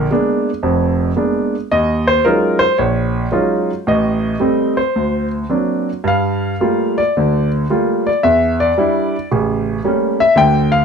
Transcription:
grand piano
0.11 G#3 A#3 B3 D4
0.63 F1 F2
1.17 G#3 A#3 B3 D4
1.72 D#2 D#5
2.08 C5
2.25 F#3 G#3 C#4 D#4 F4 A#4
2.59 C5
2.78 A#1 C#5
3.32 F#3 G#3 C#4 D#4 F4
3.87 A1 A2 D#5
4.40 G3 A3 C4
4.77 C5
4.96 D2
5.49 F#3 A#3 C4 D4
6.04 G2 F5
6.60 G3 A3 A#3 F4
6.98 D5
7.17 D2 D3
7.70 G3 A3 A#3 F4
8.07 D5
8.23 E2 E5
8.60 D5
8.78 G3 D4 E4
9.31 A1 C#3
9.84 G3 A3 A#3 C#4
10.20 E5
10.36 D2 D3 G5
10.72 F5

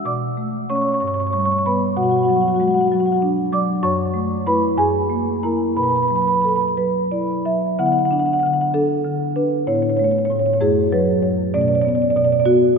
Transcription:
marimba
0.05 B2 D5 D6
0.37 A3
0.70 A3 C#4 C#5 C#6
0.75 C#5 C#6
0.82 C#5 C#6
0.88 C#6
0.92 C#5 C#6
1.00 G2 C#5 C#6
1.07 C#5 C#6
1.14 C#5 C#6
1.20 C#5 C#6
1.27 C#5 C#6
1.33 G3 C#5 C#6
1.40 C#6
1.44 C#5 C#6
1.51 C#5 C#6
1.58 C#6
1.66 G3 B3 B4 B5
1.97 B2 F#4 F#5
2.03 F#4 F#5
2.09 F#4 F#5
2.16 F#4 F#5
2.23 F#4 F#5
2.28 F#3 F#5
2.33 F#4 F#5
2.41 F#4 F#5
2.48 F#4 F#5
2.54 F#4 F#5
2.60 G#3 F#4 F#5
2.68 F#4 F#5
2.74 F#4 F#5
2.81 F#5
2.85 F#4 F#5
2.92 F#3 F#4 F#5
2.99 F#4 F#5
3.06 F#4 F#5
3.12 F#4 F#5
3.22 D4
3.53 F#3 D5 D6
3.83 F#2 C#5 C#6
4.14 A3
4.47 A3 E4 B4 B5
4.78 F#2 G#4 G#5
5.10 A#3
5.43 A#3 E4 A#4 A#5
5.76 B2 B4 B5
5.83 B4 B5
5.89 B4 B5
5.96 B4 B5
6.03 B4 B5
6.08 F#3 B4 B5
6.16 B4 B5
6.22 B4 B5
6.27 B4 B5
6.34 B5
6.38 B4 B5
6.44 A4 B4
6.49 B4 B5
6.56 B4 B5
6.61 B5
6.66 B4 B5
6.77 F#3 B4
7.11 E4 D5
7.45 F#3 E5
7.79 D3 B3 E4 F#5
7.86 F#5
7.92 F#5
7.99 F#5
8.05 F#5
8.11 D4 F#5
8.19 F#5
8.26 F#5
8.33 F#5
8.39 D3 F#5
8.46 F#5
8.53 F#5
8.61 F#5
8.74 D4 A4
9.05 D3
9.36 D4 B4
9.67 A2 B3 E4 C#5
9.75 C#5
9.82 C#5
9.90 C#5
9.97 A3 C#5
10.04 C#5
10.11 C#5
10.18 C#5
10.25 C#5
10.30 A2 C#5
10.39 C#5
10.46 C#5
10.53 C#5
10.61 F#2 A3 E4 G#4
10.92 F#3 B4
11.22 F#2 C#5
11.54 B2 A3 C#4 D5
11.61 D5
11.68 D5
11.75 D5
11.81 B3 D5
11.88 D5
11.95 D5
12.02 D5
12.10 D5
12.16 B2 D5
12.25 D5
12.32 D5
12.40 D5
12.45 B3 F#4

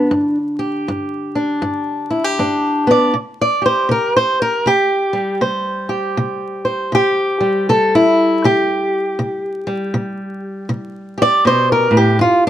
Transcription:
steel-string acoustic guitar
Already playing: D3 D4
0.11 G2
0.59 G4
0.88 G2
1.35 D4
1.62 G2
2.10 E4
2.24 G4
2.39 G2 D4
2.87 B3 D5
3.14 C3
3.41 D5
3.62 G4 C5
3.89 C3 A#4
4.17 C5
4.42 A#4
4.66 C3 G4
5.13 G3
5.41 C3 C5
5.89 G4
6.17 C3
6.65 C5
6.92 C3 G4
7.41 G3
7.69 C3 A4
7.95 E4
8.44 C3 G4
9.19 C3
9.67 G3
9.94 C3
10.69 C3
11.18 G4
11.22 D5
11.45 B2 C5
11.72 A#4
11.91 A2
11.97 G4
12.19 G2 F4

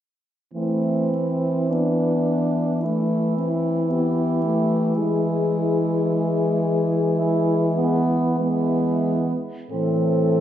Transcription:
french horn
0.54 E3 A3 C4 E4
1.13 C4
1.70 B3 D4 E4
2.83 A3 E4
3.38 C4
3.90 B3 G4
4.43 A3
4.96 E3 G#3 G#4
6.06 G#4
7.17 E4
7.76 B3
8.36 G#3 B3 E4
9.70 A2 E3 C4 A4

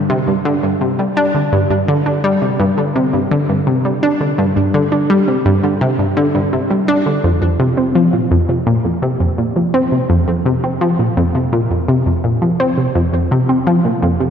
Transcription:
synth arpeggio sound
0.10 C3
0.28 G2
0.45 D3
0.63 G2
0.81 C3
0.99 G3
1.17 D4
1.35 D3
1.52 G2
1.70 G2
1.88 D3
2.06 D4
2.24 G3
2.42 C3
2.60 G2
2.78 D3
2.95 C3
3.14 G2
3.31 D3
3.49 G2
3.67 C3
3.85 G3
4.03 D4
4.21 D3
4.38 G2
4.56 G2
4.74 D3
4.92 D4
5.10 G3
5.28 C3
5.45 G2
5.63 D3
5.81 C3
5.99 G2
6.17 D3
6.35 G2
6.53 C3
6.70 G3
6.88 D4
7.06 D3
7.24 F2
7.42 F2
7.60 C3
7.77 C4
7.95 F3
8.13 A#2
8.31 F2
8.49 C3
8.67 A#2
8.85 F2
9.02 C3
9.20 F2
9.38 A#2
9.56 F3
9.74 C4
9.92 C3
10.10 F2
10.28 F2
10.46 C3
10.64 C4
10.81 F3
10.99 A#2
11.17 F2
11.35 C3
11.53 A#2
11.71 F2
11.88 C3
12.06 F2
12.24 A#2
12.42 F3
12.60 C4
12.78 C3
12.95 F2
13.13 F2
13.31 C3
13.49 C4
13.67 F3
13.85 A#2
14.03 F2
14.20 C3

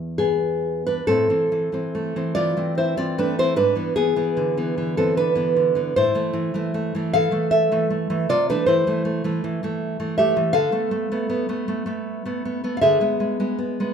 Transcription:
nylon-string guitar
Already playing: E2 E3 B3 G#4
0.18 B3 G#4
0.86 D4 B4
1.07 A2 C4 A4
1.30 E3 C4
1.52 E3
1.72 E3 C4
1.95 A3
2.16 E3 C4
2.35 E3 F4 D5
2.57 E3 C4
2.78 E4 C5
2.97 E3 C4 F4 D5
3.18 A3 D4 B4
3.39 E3 C4 E4 C5
3.56 G#2 D4 B4
3.75 E3 B3
3.96 E3 B3 G#4
4.16 E3 B3
4.37 D3
4.57 E3 B3
4.78 E3
4.97 E3 B3 C4 A4
5.17 D4 B4
5.35 E3 B3
5.56 D3
5.75 E3 B3
5.96 A2 E4 C5
6.15 E3 A3
6.33 E3
6.54 E3 A3
6.74 A3
6.95 E3 A3
7.13 E3 A4 F5
7.31 E3 A3
7.51 A4 E5
7.72 E3 A3
7.90 A3
8.10 E3 A3
8.29 C3 F4 D5
8.49 E3 A3 D4 B4
8.66 E3 E4 C5
8.87 E3 A3
9.05 A3
9.24 E3 A3
9.44 E3
9.63 E3 A3
10.00 E3 A3
10.18 A3 G4 E5
10.37 E3 A3
10.53 D3 A4 F5
10.72 A3 B3
10.91 A3
11.12 A3 B3
11.29 B3
11.49 A3 B3
11.68 A3
11.86 A3 B3
12.25 A3 B3
12.45 B3
12.64 A3 B3
12.77 F5
12.81 D3 G#4 E5
13.01 G#3 B3
13.20 G#3
13.40 G#3 B3
13.59 B3
13.80 G#3 B3

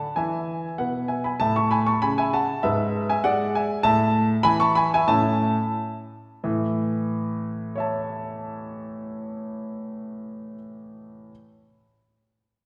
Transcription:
grand piano
Already playing: F#5 A5
0.16 E3 E5 G#5
0.78 B2 B4 F#5
1.08 E5 G#5
1.24 G#5 B5
1.40 A2 E5 A5
1.56 A5 C#6
1.71 G#5 B5
1.86 A5 C#6
2.02 C#3 G#5 B5
2.18 E5 G#5
2.33 F#5 A5
2.63 G#2 B4 E5
3.09 E5 G#5
3.24 G#3 D5 F#5
3.55 E5 G#5
3.83 A2 E5 A5
4.43 E3 G#5 B5
4.60 A5 C#6
4.75 G#5 B5
4.94 E5 G#5
5.08 A2 C#4 E4 E5 A5
6.44 A2 E3
7.75 C#5 E5
7.80 A5

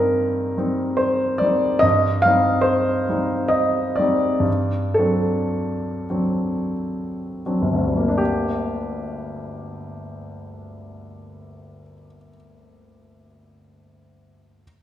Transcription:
grand piano
Already playing: G2 G3 C4 D#4 A#4 D#5
0.57 G3 C4 D#4
0.97 C5
1.38 G3 C4 D5
1.42 D#4
1.79 G2 D#5
2.22 G3 F5
2.26 C4 D#4
2.61 C5
3.09 G3 C4 D#4
3.48 D#5
3.96 G3 C4 D5
4.00 D#4
4.40 G2
4.94 A4
4.99 F#3 C4 D4
6.10 F#3 C4 D4
7.46 F#3 C4 D4
7.62 G1
7.73 D2
7.85 G3
7.97 A#3
8.09 D4
8.18 G4

